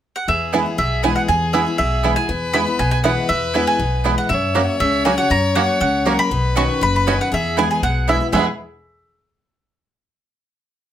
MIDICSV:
0, 0, Header, 1, 7, 480
1, 0, Start_track
1, 0, Key_signature, 4, "major"
1, 0, Tempo, 251889
1, 532, Time_signature, 4, 2, 24, 8
1, 20809, End_track
2, 0, Start_track
2, 0, Title_t, "Mandolin"
2, 0, Program_c, 0, 25
2, 301, Note_on_c, 0, 78, 77
2, 541, Note_off_c, 0, 78, 0
2, 542, Note_on_c, 0, 76, 78
2, 1428, Note_off_c, 0, 76, 0
2, 1494, Note_on_c, 0, 76, 81
2, 1938, Note_off_c, 0, 76, 0
2, 1974, Note_on_c, 0, 80, 83
2, 2196, Note_off_c, 0, 80, 0
2, 2204, Note_on_c, 0, 78, 75
2, 2299, Note_off_c, 0, 78, 0
2, 2449, Note_on_c, 0, 80, 88
2, 2893, Note_off_c, 0, 80, 0
2, 2919, Note_on_c, 0, 76, 81
2, 3374, Note_off_c, 0, 76, 0
2, 3397, Note_on_c, 0, 76, 87
2, 4072, Note_off_c, 0, 76, 0
2, 4117, Note_on_c, 0, 80, 86
2, 4783, Note_off_c, 0, 80, 0
2, 4830, Note_on_c, 0, 83, 91
2, 5314, Note_off_c, 0, 83, 0
2, 5321, Note_on_c, 0, 80, 93
2, 5529, Note_off_c, 0, 80, 0
2, 5552, Note_on_c, 0, 80, 86
2, 5773, Note_off_c, 0, 80, 0
2, 5788, Note_on_c, 0, 78, 83
2, 6257, Note_off_c, 0, 78, 0
2, 6265, Note_on_c, 0, 76, 85
2, 6940, Note_off_c, 0, 76, 0
2, 7000, Note_on_c, 0, 80, 93
2, 7659, Note_off_c, 0, 80, 0
2, 7963, Note_on_c, 0, 78, 82
2, 8175, Note_off_c, 0, 78, 0
2, 8177, Note_on_c, 0, 76, 85
2, 9071, Note_off_c, 0, 76, 0
2, 9151, Note_on_c, 0, 76, 93
2, 9616, Note_off_c, 0, 76, 0
2, 9624, Note_on_c, 0, 80, 87
2, 9851, Note_off_c, 0, 80, 0
2, 9865, Note_on_c, 0, 78, 85
2, 10108, Note_off_c, 0, 78, 0
2, 10117, Note_on_c, 0, 82, 95
2, 10557, Note_off_c, 0, 82, 0
2, 10584, Note_on_c, 0, 78, 89
2, 11048, Note_off_c, 0, 78, 0
2, 11071, Note_on_c, 0, 78, 99
2, 11787, Note_off_c, 0, 78, 0
2, 11795, Note_on_c, 0, 83, 101
2, 12459, Note_off_c, 0, 83, 0
2, 12519, Note_on_c, 0, 85, 105
2, 12961, Note_off_c, 0, 85, 0
2, 13008, Note_on_c, 0, 83, 106
2, 13228, Note_off_c, 0, 83, 0
2, 13262, Note_on_c, 0, 83, 88
2, 13468, Note_off_c, 0, 83, 0
2, 13487, Note_on_c, 0, 80, 90
2, 13708, Note_off_c, 0, 80, 0
2, 13741, Note_on_c, 0, 78, 84
2, 13971, Note_off_c, 0, 78, 0
2, 13984, Note_on_c, 0, 76, 93
2, 14417, Note_off_c, 0, 76, 0
2, 14458, Note_on_c, 0, 80, 93
2, 14664, Note_off_c, 0, 80, 0
2, 14687, Note_on_c, 0, 80, 83
2, 14903, Note_off_c, 0, 80, 0
2, 14925, Note_on_c, 0, 78, 98
2, 15410, Note_off_c, 0, 78, 0
2, 15418, Note_on_c, 0, 76, 74
2, 15747, Note_off_c, 0, 76, 0
2, 15875, Note_on_c, 0, 76, 81
2, 16106, Note_off_c, 0, 76, 0
2, 20809, End_track
3, 0, Start_track
3, 0, Title_t, "Fiddle"
3, 0, Program_c, 1, 110
3, 525, Note_on_c, 1, 68, 84
3, 4281, Note_off_c, 1, 68, 0
3, 4362, Note_on_c, 1, 71, 102
3, 5719, Note_off_c, 1, 71, 0
3, 5791, Note_on_c, 1, 71, 102
3, 7873, Note_off_c, 1, 71, 0
3, 8194, Note_on_c, 1, 73, 109
3, 11549, Note_on_c, 1, 70, 99
3, 11578, Note_off_c, 1, 73, 0
3, 12021, Note_on_c, 1, 71, 100
3, 12050, Note_off_c, 1, 70, 0
3, 13939, Note_off_c, 1, 71, 0
3, 13951, Note_on_c, 1, 68, 79
3, 15567, Note_off_c, 1, 68, 0
3, 15872, Note_on_c, 1, 68, 71
3, 16105, Note_off_c, 1, 68, 0
3, 20809, End_track
4, 0, Start_track
4, 0, Title_t, "Mandolin"
4, 0, Program_c, 2, 25
4, 1001, Note_on_c, 2, 59, 91
4, 1009, Note_on_c, 2, 64, 89
4, 1014, Note_on_c, 2, 71, 96
4, 1020, Note_on_c, 2, 80, 91
4, 1181, Note_off_c, 2, 59, 0
4, 1185, Note_off_c, 2, 64, 0
4, 1187, Note_off_c, 2, 71, 0
4, 1191, Note_off_c, 2, 80, 0
4, 1955, Note_on_c, 2, 59, 70
4, 1959, Note_on_c, 2, 64, 80
4, 1966, Note_on_c, 2, 71, 80
4, 1971, Note_on_c, 2, 80, 95
4, 2137, Note_off_c, 2, 59, 0
4, 2139, Note_off_c, 2, 64, 0
4, 2142, Note_off_c, 2, 71, 0
4, 2145, Note_off_c, 2, 80, 0
4, 2918, Note_on_c, 2, 59, 84
4, 2923, Note_on_c, 2, 64, 95
4, 2926, Note_on_c, 2, 71, 90
4, 2932, Note_on_c, 2, 80, 93
4, 3097, Note_off_c, 2, 59, 0
4, 3099, Note_off_c, 2, 64, 0
4, 3101, Note_off_c, 2, 71, 0
4, 3104, Note_off_c, 2, 80, 0
4, 3868, Note_on_c, 2, 59, 74
4, 3875, Note_on_c, 2, 64, 83
4, 3878, Note_on_c, 2, 71, 88
4, 3884, Note_on_c, 2, 80, 84
4, 4050, Note_off_c, 2, 59, 0
4, 4053, Note_off_c, 2, 64, 0
4, 4055, Note_off_c, 2, 71, 0
4, 4058, Note_off_c, 2, 80, 0
4, 4821, Note_on_c, 2, 59, 81
4, 4829, Note_on_c, 2, 64, 88
4, 4835, Note_on_c, 2, 71, 100
4, 4840, Note_on_c, 2, 80, 90
4, 5004, Note_off_c, 2, 59, 0
4, 5008, Note_off_c, 2, 64, 0
4, 5011, Note_off_c, 2, 71, 0
4, 5013, Note_off_c, 2, 80, 0
4, 5781, Note_on_c, 2, 59, 78
4, 5788, Note_on_c, 2, 64, 83
4, 5795, Note_on_c, 2, 71, 87
4, 5800, Note_on_c, 2, 80, 80
4, 5962, Note_off_c, 2, 59, 0
4, 5965, Note_off_c, 2, 64, 0
4, 5969, Note_off_c, 2, 71, 0
4, 5971, Note_off_c, 2, 80, 0
4, 6736, Note_on_c, 2, 59, 81
4, 6745, Note_on_c, 2, 64, 96
4, 6750, Note_on_c, 2, 71, 89
4, 6754, Note_on_c, 2, 80, 92
4, 6917, Note_off_c, 2, 59, 0
4, 6922, Note_off_c, 2, 64, 0
4, 6924, Note_off_c, 2, 71, 0
4, 6926, Note_off_c, 2, 80, 0
4, 7695, Note_on_c, 2, 59, 82
4, 7703, Note_on_c, 2, 64, 85
4, 7711, Note_on_c, 2, 71, 88
4, 7715, Note_on_c, 2, 80, 78
4, 7875, Note_off_c, 2, 59, 0
4, 7879, Note_off_c, 2, 64, 0
4, 7883, Note_off_c, 2, 71, 0
4, 7885, Note_off_c, 2, 80, 0
4, 8662, Note_on_c, 2, 58, 85
4, 8667, Note_on_c, 2, 66, 83
4, 8675, Note_on_c, 2, 73, 93
4, 8677, Note_on_c, 2, 78, 97
4, 8837, Note_off_c, 2, 58, 0
4, 8840, Note_off_c, 2, 66, 0
4, 8844, Note_off_c, 2, 73, 0
4, 8845, Note_off_c, 2, 78, 0
4, 9618, Note_on_c, 2, 58, 84
4, 9626, Note_on_c, 2, 66, 80
4, 9633, Note_on_c, 2, 73, 92
4, 9636, Note_on_c, 2, 78, 88
4, 9795, Note_off_c, 2, 58, 0
4, 9799, Note_off_c, 2, 66, 0
4, 9802, Note_off_c, 2, 73, 0
4, 9804, Note_off_c, 2, 78, 0
4, 10576, Note_on_c, 2, 58, 92
4, 10585, Note_on_c, 2, 66, 91
4, 10587, Note_on_c, 2, 73, 88
4, 10593, Note_on_c, 2, 78, 105
4, 10754, Note_off_c, 2, 58, 0
4, 10759, Note_off_c, 2, 66, 0
4, 10760, Note_off_c, 2, 73, 0
4, 10763, Note_off_c, 2, 78, 0
4, 11535, Note_on_c, 2, 58, 84
4, 11542, Note_on_c, 2, 66, 73
4, 11544, Note_on_c, 2, 73, 81
4, 11547, Note_on_c, 2, 78, 84
4, 11715, Note_off_c, 2, 58, 0
4, 11718, Note_off_c, 2, 66, 0
4, 11719, Note_off_c, 2, 73, 0
4, 11721, Note_off_c, 2, 78, 0
4, 12492, Note_on_c, 2, 61, 95
4, 12500, Note_on_c, 2, 66, 93
4, 12505, Note_on_c, 2, 75, 90
4, 12510, Note_on_c, 2, 83, 107
4, 12675, Note_off_c, 2, 61, 0
4, 12679, Note_off_c, 2, 66, 0
4, 12681, Note_off_c, 2, 75, 0
4, 12684, Note_off_c, 2, 83, 0
4, 13464, Note_on_c, 2, 61, 78
4, 13469, Note_on_c, 2, 66, 94
4, 13476, Note_on_c, 2, 75, 81
4, 13481, Note_on_c, 2, 83, 85
4, 13643, Note_off_c, 2, 61, 0
4, 13645, Note_off_c, 2, 66, 0
4, 13649, Note_off_c, 2, 75, 0
4, 13651, Note_off_c, 2, 83, 0
4, 14420, Note_on_c, 2, 59, 92
4, 14427, Note_on_c, 2, 64, 92
4, 14432, Note_on_c, 2, 71, 84
4, 14437, Note_on_c, 2, 80, 98
4, 14603, Note_off_c, 2, 59, 0
4, 14606, Note_off_c, 2, 64, 0
4, 14609, Note_off_c, 2, 71, 0
4, 14611, Note_off_c, 2, 80, 0
4, 15386, Note_on_c, 2, 59, 82
4, 15392, Note_on_c, 2, 64, 82
4, 15399, Note_on_c, 2, 71, 83
4, 15402, Note_on_c, 2, 80, 83
4, 15568, Note_off_c, 2, 59, 0
4, 15571, Note_off_c, 2, 64, 0
4, 15574, Note_off_c, 2, 71, 0
4, 15576, Note_off_c, 2, 80, 0
4, 15859, Note_on_c, 2, 59, 80
4, 15869, Note_on_c, 2, 64, 90
4, 15879, Note_on_c, 2, 71, 89
4, 15889, Note_on_c, 2, 80, 97
4, 16067, Note_off_c, 2, 59, 0
4, 16071, Note_off_c, 2, 64, 0
4, 16076, Note_off_c, 2, 71, 0
4, 16081, Note_off_c, 2, 80, 0
4, 20809, End_track
5, 0, Start_track
5, 0, Title_t, "Five-string banjo"
5, 0, Program_c, 3, 105
5, 1019, Note_on_c, 3, 59, 65
5, 1031, Note_on_c, 3, 64, 66
5, 1032, Note_off_c, 3, 64, 0
5, 1032, Note_on_c, 3, 64, 62
5, 1124, Note_off_c, 3, 59, 0
5, 1129, Note_off_c, 3, 64, 0
5, 1980, Note_on_c, 3, 59, 62
5, 1988, Note_on_c, 3, 64, 65
5, 2001, Note_off_c, 3, 64, 0
5, 2001, Note_on_c, 3, 64, 66
5, 2084, Note_off_c, 3, 59, 0
5, 2088, Note_off_c, 3, 64, 0
5, 2931, Note_on_c, 3, 59, 67
5, 2942, Note_on_c, 3, 64, 61
5, 2944, Note_off_c, 3, 64, 0
5, 2944, Note_on_c, 3, 64, 60
5, 2982, Note_off_c, 3, 64, 0
5, 3037, Note_off_c, 3, 59, 0
5, 3894, Note_on_c, 3, 59, 65
5, 3903, Note_on_c, 3, 64, 62
5, 3997, Note_off_c, 3, 59, 0
5, 4000, Note_off_c, 3, 64, 0
5, 4846, Note_on_c, 3, 59, 67
5, 4860, Note_on_c, 3, 64, 64
5, 4861, Note_off_c, 3, 64, 0
5, 4861, Note_on_c, 3, 64, 63
5, 4951, Note_off_c, 3, 59, 0
5, 4957, Note_off_c, 3, 64, 0
5, 5801, Note_on_c, 3, 59, 64
5, 5815, Note_on_c, 3, 64, 60
5, 5906, Note_off_c, 3, 59, 0
5, 5912, Note_off_c, 3, 64, 0
5, 6767, Note_on_c, 3, 59, 65
5, 6781, Note_on_c, 3, 64, 63
5, 6868, Note_off_c, 3, 59, 0
5, 6873, Note_off_c, 3, 64, 0
5, 7724, Note_on_c, 3, 59, 61
5, 7730, Note_on_c, 3, 64, 60
5, 7740, Note_off_c, 3, 64, 0
5, 7740, Note_on_c, 3, 64, 60
5, 7823, Note_off_c, 3, 59, 0
5, 7828, Note_off_c, 3, 64, 0
5, 8672, Note_on_c, 3, 58, 64
5, 8682, Note_on_c, 3, 61, 61
5, 8689, Note_on_c, 3, 66, 62
5, 8776, Note_off_c, 3, 58, 0
5, 8781, Note_off_c, 3, 61, 0
5, 8782, Note_off_c, 3, 66, 0
5, 9637, Note_on_c, 3, 58, 63
5, 9645, Note_on_c, 3, 61, 62
5, 9650, Note_on_c, 3, 66, 62
5, 9738, Note_off_c, 3, 58, 0
5, 9740, Note_off_c, 3, 61, 0
5, 9744, Note_off_c, 3, 66, 0
5, 10595, Note_on_c, 3, 58, 65
5, 10608, Note_on_c, 3, 61, 64
5, 10609, Note_on_c, 3, 66, 63
5, 10698, Note_off_c, 3, 58, 0
5, 10701, Note_off_c, 3, 61, 0
5, 10704, Note_off_c, 3, 66, 0
5, 11557, Note_on_c, 3, 58, 64
5, 11567, Note_on_c, 3, 61, 61
5, 11567, Note_on_c, 3, 66, 59
5, 11659, Note_off_c, 3, 58, 0
5, 11661, Note_off_c, 3, 61, 0
5, 11663, Note_off_c, 3, 66, 0
5, 12521, Note_on_c, 3, 59, 64
5, 12528, Note_on_c, 3, 61, 64
5, 12530, Note_on_c, 3, 66, 65
5, 12622, Note_off_c, 3, 59, 0
5, 12624, Note_off_c, 3, 61, 0
5, 12626, Note_off_c, 3, 66, 0
5, 13480, Note_on_c, 3, 59, 60
5, 13490, Note_on_c, 3, 61, 60
5, 13491, Note_on_c, 3, 66, 65
5, 13584, Note_off_c, 3, 59, 0
5, 13586, Note_off_c, 3, 61, 0
5, 13589, Note_off_c, 3, 66, 0
5, 14443, Note_on_c, 3, 59, 65
5, 14454, Note_on_c, 3, 64, 65
5, 14455, Note_off_c, 3, 64, 0
5, 14455, Note_on_c, 3, 64, 66
5, 14547, Note_off_c, 3, 59, 0
5, 14553, Note_off_c, 3, 64, 0
5, 15409, Note_on_c, 3, 59, 59
5, 15414, Note_on_c, 3, 64, 58
5, 15422, Note_off_c, 3, 64, 0
5, 15422, Note_on_c, 3, 64, 65
5, 15512, Note_off_c, 3, 59, 0
5, 15518, Note_off_c, 3, 64, 0
5, 15875, Note_on_c, 3, 56, 75
5, 15912, Note_on_c, 3, 59, 75
5, 15952, Note_on_c, 3, 64, 73
5, 15990, Note_on_c, 3, 68, 77
5, 16106, Note_off_c, 3, 56, 0
5, 16126, Note_off_c, 3, 59, 0
5, 16147, Note_off_c, 3, 64, 0
5, 16168, Note_off_c, 3, 68, 0
5, 20809, End_track
6, 0, Start_track
6, 0, Title_t, "Steel-string acoustic guitar"
6, 0, Program_c, 4, 25
6, 536, Note_on_c, 4, 40, 86
6, 1016, Note_on_c, 4, 52, 64
6, 1024, Note_on_c, 4, 56, 64
6, 1038, Note_on_c, 4, 59, 69
6, 1041, Note_on_c, 4, 64, 74
6, 1233, Note_off_c, 4, 64, 0
6, 1249, Note_off_c, 4, 52, 0
6, 1253, Note_off_c, 4, 56, 0
6, 1256, Note_on_c, 4, 64, 52
6, 1260, Note_off_c, 4, 59, 0
6, 1286, Note_on_c, 4, 59, 44
6, 1445, Note_off_c, 4, 40, 0
6, 1481, Note_off_c, 4, 64, 0
6, 1489, Note_on_c, 4, 47, 91
6, 1496, Note_off_c, 4, 59, 0
6, 1970, Note_on_c, 4, 52, 65
6, 1979, Note_on_c, 4, 56, 67
6, 1985, Note_on_c, 4, 59, 69
6, 1998, Note_on_c, 4, 64, 73
6, 2400, Note_off_c, 4, 47, 0
6, 2425, Note_off_c, 4, 52, 0
6, 2429, Note_off_c, 4, 56, 0
6, 2433, Note_off_c, 4, 59, 0
6, 2439, Note_off_c, 4, 64, 0
6, 2454, Note_on_c, 4, 40, 84
6, 2927, Note_on_c, 4, 52, 67
6, 2936, Note_on_c, 4, 56, 70
6, 2945, Note_on_c, 4, 59, 69
6, 2953, Note_on_c, 4, 64, 73
6, 3146, Note_off_c, 4, 64, 0
6, 3161, Note_off_c, 4, 52, 0
6, 3166, Note_off_c, 4, 56, 0
6, 3168, Note_on_c, 4, 64, 52
6, 3170, Note_off_c, 4, 59, 0
6, 3200, Note_on_c, 4, 59, 44
6, 3361, Note_off_c, 4, 40, 0
6, 3394, Note_off_c, 4, 64, 0
6, 3410, Note_off_c, 4, 59, 0
6, 3410, Note_on_c, 4, 47, 92
6, 3881, Note_on_c, 4, 52, 64
6, 3894, Note_on_c, 4, 56, 68
6, 3904, Note_on_c, 4, 59, 67
6, 3912, Note_on_c, 4, 64, 73
6, 4112, Note_off_c, 4, 64, 0
6, 4116, Note_off_c, 4, 52, 0
6, 4123, Note_off_c, 4, 56, 0
6, 4128, Note_off_c, 4, 59, 0
6, 4135, Note_on_c, 4, 64, 56
6, 4162, Note_on_c, 4, 59, 44
6, 4316, Note_off_c, 4, 47, 0
6, 4355, Note_off_c, 4, 64, 0
6, 4361, Note_on_c, 4, 40, 91
6, 4369, Note_off_c, 4, 59, 0
6, 4832, Note_on_c, 4, 52, 66
6, 4845, Note_on_c, 4, 56, 68
6, 4853, Note_on_c, 4, 59, 64
6, 4860, Note_on_c, 4, 64, 71
6, 5058, Note_off_c, 4, 64, 0
6, 5069, Note_off_c, 4, 52, 0
6, 5076, Note_off_c, 4, 56, 0
6, 5080, Note_off_c, 4, 59, 0
6, 5081, Note_on_c, 4, 64, 60
6, 5107, Note_on_c, 4, 59, 49
6, 5270, Note_off_c, 4, 40, 0
6, 5306, Note_off_c, 4, 64, 0
6, 5319, Note_off_c, 4, 59, 0
6, 5321, Note_on_c, 4, 47, 90
6, 5794, Note_on_c, 4, 52, 63
6, 5808, Note_on_c, 4, 56, 65
6, 5822, Note_on_c, 4, 59, 73
6, 5824, Note_on_c, 4, 64, 75
6, 6228, Note_off_c, 4, 47, 0
6, 6248, Note_off_c, 4, 52, 0
6, 6256, Note_off_c, 4, 56, 0
6, 6263, Note_off_c, 4, 59, 0
6, 6264, Note_off_c, 4, 64, 0
6, 6278, Note_on_c, 4, 40, 89
6, 6742, Note_on_c, 4, 52, 59
6, 6755, Note_on_c, 4, 56, 68
6, 6763, Note_on_c, 4, 59, 69
6, 6772, Note_on_c, 4, 64, 75
6, 7184, Note_off_c, 4, 40, 0
6, 7201, Note_off_c, 4, 52, 0
6, 7207, Note_off_c, 4, 56, 0
6, 7211, Note_off_c, 4, 59, 0
6, 7216, Note_off_c, 4, 64, 0
6, 7230, Note_on_c, 4, 47, 91
6, 7705, Note_on_c, 4, 52, 62
6, 7715, Note_on_c, 4, 56, 64
6, 7721, Note_on_c, 4, 59, 65
6, 7734, Note_on_c, 4, 64, 72
6, 8139, Note_off_c, 4, 47, 0
6, 8161, Note_off_c, 4, 52, 0
6, 8166, Note_off_c, 4, 56, 0
6, 8169, Note_off_c, 4, 59, 0
6, 8175, Note_off_c, 4, 64, 0
6, 8186, Note_on_c, 4, 42, 85
6, 8661, Note_on_c, 4, 54, 61
6, 8680, Note_on_c, 4, 58, 70
6, 8683, Note_on_c, 4, 61, 64
6, 8692, Note_on_c, 4, 66, 70
6, 9097, Note_off_c, 4, 42, 0
6, 9118, Note_off_c, 4, 54, 0
6, 9127, Note_off_c, 4, 58, 0
6, 9129, Note_off_c, 4, 61, 0
6, 9134, Note_off_c, 4, 66, 0
6, 9149, Note_on_c, 4, 49, 91
6, 9623, Note_on_c, 4, 54, 65
6, 9638, Note_on_c, 4, 58, 67
6, 9644, Note_on_c, 4, 61, 72
6, 9650, Note_on_c, 4, 66, 75
6, 9854, Note_off_c, 4, 66, 0
6, 9858, Note_off_c, 4, 54, 0
6, 9865, Note_off_c, 4, 58, 0
6, 9869, Note_off_c, 4, 61, 0
6, 9877, Note_on_c, 4, 66, 65
6, 9901, Note_on_c, 4, 61, 51
6, 10058, Note_off_c, 4, 49, 0
6, 10098, Note_off_c, 4, 66, 0
6, 10102, Note_on_c, 4, 42, 86
6, 10110, Note_off_c, 4, 61, 0
6, 10580, Note_on_c, 4, 54, 61
6, 10593, Note_on_c, 4, 58, 68
6, 10607, Note_on_c, 4, 61, 67
6, 10616, Note_on_c, 4, 66, 71
6, 11016, Note_off_c, 4, 42, 0
6, 11038, Note_off_c, 4, 54, 0
6, 11045, Note_off_c, 4, 58, 0
6, 11052, Note_off_c, 4, 61, 0
6, 11056, Note_off_c, 4, 66, 0
6, 11061, Note_on_c, 4, 49, 93
6, 11539, Note_on_c, 4, 54, 68
6, 11545, Note_on_c, 4, 58, 70
6, 11562, Note_on_c, 4, 61, 67
6, 11565, Note_on_c, 4, 66, 68
6, 11977, Note_off_c, 4, 49, 0
6, 11999, Note_off_c, 4, 54, 0
6, 12002, Note_off_c, 4, 58, 0
6, 12011, Note_off_c, 4, 61, 0
6, 12012, Note_off_c, 4, 66, 0
6, 12029, Note_on_c, 4, 47, 93
6, 12478, Note_off_c, 4, 47, 0
6, 12501, Note_on_c, 4, 47, 64
6, 12509, Note_on_c, 4, 51, 71
6, 12521, Note_on_c, 4, 61, 73
6, 12527, Note_on_c, 4, 66, 68
6, 12962, Note_off_c, 4, 47, 0
6, 12966, Note_off_c, 4, 51, 0
6, 12972, Note_off_c, 4, 61, 0
6, 12975, Note_off_c, 4, 66, 0
6, 12983, Note_on_c, 4, 42, 97
6, 13474, Note_on_c, 4, 47, 66
6, 13485, Note_on_c, 4, 51, 67
6, 13489, Note_on_c, 4, 61, 76
6, 13500, Note_on_c, 4, 66, 72
6, 13902, Note_off_c, 4, 42, 0
6, 13930, Note_off_c, 4, 47, 0
6, 13936, Note_off_c, 4, 51, 0
6, 13938, Note_off_c, 4, 61, 0
6, 13942, Note_on_c, 4, 40, 92
6, 13943, Note_off_c, 4, 66, 0
6, 14422, Note_on_c, 4, 52, 62
6, 14431, Note_on_c, 4, 56, 68
6, 14443, Note_on_c, 4, 59, 68
6, 14454, Note_on_c, 4, 64, 75
6, 14863, Note_off_c, 4, 40, 0
6, 14887, Note_off_c, 4, 52, 0
6, 14891, Note_off_c, 4, 56, 0
6, 14897, Note_off_c, 4, 59, 0
6, 14902, Note_off_c, 4, 64, 0
6, 14926, Note_on_c, 4, 47, 87
6, 15388, Note_on_c, 4, 52, 67
6, 15397, Note_on_c, 4, 56, 66
6, 15407, Note_on_c, 4, 59, 65
6, 15414, Note_on_c, 4, 64, 74
6, 15608, Note_off_c, 4, 64, 0
6, 15629, Note_off_c, 4, 52, 0
6, 15631, Note_on_c, 4, 64, 56
6, 15634, Note_off_c, 4, 56, 0
6, 15639, Note_off_c, 4, 59, 0
6, 15662, Note_on_c, 4, 59, 48
6, 15838, Note_off_c, 4, 47, 0
6, 15859, Note_off_c, 4, 59, 0
6, 15862, Note_on_c, 4, 40, 82
6, 15864, Note_off_c, 4, 64, 0
6, 15865, Note_on_c, 4, 47, 87
6, 15872, Note_on_c, 4, 52, 78
6, 15880, Note_on_c, 4, 56, 86
6, 15882, Note_on_c, 4, 59, 88
6, 15892, Note_on_c, 4, 64, 98
6, 16068, Note_off_c, 4, 40, 0
6, 16069, Note_off_c, 4, 47, 0
6, 16073, Note_off_c, 4, 52, 0
6, 16077, Note_off_c, 4, 56, 0
6, 16078, Note_off_c, 4, 59, 0
6, 16083, Note_off_c, 4, 64, 0
6, 20809, End_track
7, 0, Start_track
7, 0, Title_t, "Upright bass"
7, 0, Program_c, 5, 32
7, 527, Note_on_c, 5, 40, 91
7, 1193, Note_off_c, 5, 40, 0
7, 1488, Note_on_c, 5, 35, 82
7, 2153, Note_off_c, 5, 35, 0
7, 2440, Note_on_c, 5, 40, 93
7, 3107, Note_off_c, 5, 40, 0
7, 3407, Note_on_c, 5, 35, 80
7, 4069, Note_off_c, 5, 35, 0
7, 4354, Note_on_c, 5, 40, 91
7, 5019, Note_off_c, 5, 40, 0
7, 5316, Note_on_c, 5, 35, 84
7, 5979, Note_off_c, 5, 35, 0
7, 6268, Note_on_c, 5, 40, 85
7, 6932, Note_off_c, 5, 40, 0
7, 7218, Note_on_c, 5, 35, 84
7, 7885, Note_off_c, 5, 35, 0
7, 8183, Note_on_c, 5, 42, 92
7, 8848, Note_off_c, 5, 42, 0
7, 9142, Note_on_c, 5, 37, 86
7, 9808, Note_off_c, 5, 37, 0
7, 10103, Note_on_c, 5, 42, 97
7, 10770, Note_off_c, 5, 42, 0
7, 11061, Note_on_c, 5, 37, 88
7, 11729, Note_off_c, 5, 37, 0
7, 12018, Note_on_c, 5, 35, 89
7, 12688, Note_off_c, 5, 35, 0
7, 12980, Note_on_c, 5, 30, 83
7, 13651, Note_off_c, 5, 30, 0
7, 13945, Note_on_c, 5, 40, 90
7, 14616, Note_off_c, 5, 40, 0
7, 14901, Note_on_c, 5, 35, 83
7, 15575, Note_off_c, 5, 35, 0
7, 15865, Note_on_c, 5, 40, 91
7, 16101, Note_off_c, 5, 40, 0
7, 20809, End_track
0, 0, End_of_file